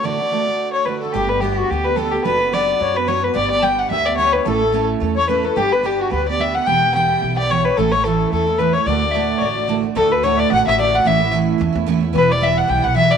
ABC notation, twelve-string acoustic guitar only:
X:1
M:4/4
L:1/8
Q:"Swing" 1/4=218
K:D
V:1 name="Twelve-string acoustic guitar"
[D,,A,,D,A,DF] [D,A,DF] [D,A,DF] [D,A,DF]3 [D,A,DF] [D,A,DF] | [G,B,DG] [B,DG] [G,B,DG]2 [G,B,DG] [B,DG] [G,B,DG] [B,DG] | [F,B,DF] [B,DF] [F,B,DF]2 [F,B,DF] [B,DF] [F,B,DF] [B,DF] | [G,B,DG] [B,DG] [G,B,DG]2 [G,B,DG] [B,DG] [G,B,DG] [B,DG] |
[A,,A,CEA] [CEA] [A,,A,CEA]2 [A,CEA] [CEA] [A,,A,CEA] [CEA] | [G,B,DG] [B,DG] [G,B,DG]2 [G,B,DG] [B,DG] [G,B,DG] [B,DG] | [E,G,B,G] [G,B,G] [E,G,B,G]2 [E,G,B,G] [G,B,G] [E,G,B,G] [G,B,G] | [A,,E,A,CE] [A,CE] [A,,E,A,CE]2 [E,A,CE] [A,CE] [A,,E,A,CE] [A,CE] |
[D,,A,,D,A,DF] [D,A,DF] [D,,A,,D,A,DF]2 [D,A,DF] [D,A,DF] [D,,A,,D,A,DF] [D,A,DF] | [D,,A,,D,A,DF] [D,A,DF] [D,,A,,D,A,DF]2 [D,A,DF] [D,A,DF] [D,,A,,D,A,DF] [D,A,DF] | [A,,E,A,CE] [A,CE] [A,,E,A,CE]2 [E,A,CE] [A,CE] [A,,E,A,CE] [A,CE] | [E,G,B,E] [G,B,E] [E,G,B,E]2 [E,G,B,E] [G,B,E] [E,G,B,E] [G,B,E] |]